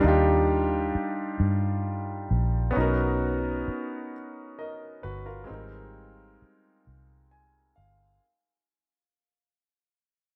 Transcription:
Already playing: G3
0.01 D#2 D4 D#4
0.06 F4 G4
0.95 muted fingered electric bass stroke
1.40 G2
2.31 A#1
2.71 B3 C#4
2.76 B1 D#4 F#4
2.81 A#4
3.68 muted fingered electric bass stroke
4.59 A#4 D#5
5.03 G1 F#4 B4
5.26 F4 A#4
5.44 G#3 C4
5.49 G#1 G3 D#4
5.54 A#4
6.42 muted fingered electric bass stroke
6.87 C2
7.31 G#5
7.76 G1 F5

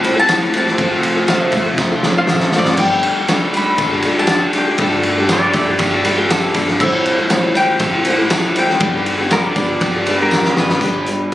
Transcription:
Already playing: A2 E3 A3 C4 E4 G4 A4 G5
0.03 G3 C4 E4 A4, ride, tambourine
0.16 A2 E3 G3 C4 E4 A4 A5
0.29 snare, ride, tambourine
0.53 G3 C4 E4 A4 A5, ride, tambourine
0.67 G3 C4 E4 A4, snare
0.78 F1 F3 A3 C4 F4 A4, kick, ride
0.92 tambourine
1.03 ride, tambourine
1.16 C4 F4 A4, tambourine
1.28 F3 A3 C4 F4 A4 F5, snare, ride, tambourine
1.43 E5
1.52 F1 A3 C4, kick, ride, tambourine
1.56 F4 A4
1.66 C4 F4 A4, tambourine
1.78 F1 F3 C4 F4 A4, kick, snare, tambourine
1.91 C4 F4 A4, tambourine
2.03 A3 C4 F4, snare, tambourine
2.08 A4
2.17 F3 A3 C4 F4 A4 F5, tambourine
2.27 A1, snare, tambourine
2.32 E5
2.40 snare
2.52 A3 C4, snare, tambourine
2.56 G1 F4 A4 D5
2.65 A4, snare
2.70 C4 F4 F#5
2.77 G1 G3 A3 D4 G4 A4 G5, kick, crash
2.82 D4 G4 A4
2.91 tambourine
3.03 ride, tambourine
3.18 D4 G4 A4, tambourine
3.28 G3 D4 G4, snare, ride, tambourine
3.33 A4
3.42 tambourine
3.54 G3 D4 G4 A4 B5, ride, tambourine
3.67 tambourine
3.77 G1 G3 A3 D4 A4, kick, ride, tambourine
3.91 D4 G4 A4
4.02 G3 D4, ride, tambourine
4.07 G4 A4
4.17 G3 D4 G4 A4 A5
4.27 snare, ride, tambourine
4.53 G3 D4 G4, ride, tambourine
4.58 A4 G5
4.67 D4 G4 A4
4.78 G2 G3 A3 D4 G4 A4, kick, ride
4.92 tambourine
5.03 ride, tambourine
5.17 D4 G4 A4
5.29 G3 D4 G4, snare, ride, tambourine
5.33 A4 D5
5.42 tambourine
5.53 G1 G3 D4 D5, kick, ride, tambourine
5.58 G4 A4
5.68 D4 G4 A4, tambourine
5.78 G1 G3 A3 D4 A4, kick, ride, tambourine
5.93 D4 G4 A4
6.05 G3 D4 G4 A4, ride, tambourine
6.17 G3 D4 G4 A4
6.30 A4, snare, ride, tambourine
6.54 G1 G3 D4 G4 A4, kick, ride, tambourine
6.67 D4 G4 A4, snare
6.80 A1 A2 E3 G3 C4 E4 G4 A4 E5, kick, crash
6.93 tambourine
7.05 ride, tambourine
7.17 G3 C4 E4 A4, tambourine
7.30 A2 E3 G3 C4 E4 A4, snare, ride, tambourine
7.43 tambourine
7.54 G3 C4 E4 A4 G5, ride, tambourine
7.79 A1 A2 E3 C4 E4 A4, kick, ride, tambourine
7.94 G3 C4 E4 A4
8.05 G3 C4 E4, ride, tambourine
8.09 A4 F#5
8.18 A2 E3 G3 C4 E4 A4
8.30 snare, ride, tambourine
8.55 G3 C4 E4 A4 G5, ride, tambourine
8.69 G3 C4 E4 A4, snare
8.80 G1 G2 D3 G3 B3 D4 G4 A4 A5, kick, ride, tambourine
9.06 ride
9.18 D4 G4 A4, tambourine
9.31 G3 B3 D4 G4 A4 A#4, snare, ride, tambourine
9.46 D5
9.56 G1 B3 D4 G4 A4, kick, ride, tambourine
9.68 tambourine
9.81 G1 G2 D3 G3 B3 D4 G4, kick, ride, tambourine
9.96 D4 G4 A4
10.06 B3 D4, ride, tambourine
10.10 G4 A4
10.21 G3 B3 D4 G4 A#4
10.31 A1, snare, tambourine
10.44 snare, tambourine
10.57 G1 B3 D4 G4 A4 B4, snare, tambourine
10.70 D4 G4 A4, snare, tambourine
10.81 G1 G3 B3 D4 G4 B4, kick, closed hi-hat
11.06 G3 D4, closed hi-hat
11.12 G4 B4

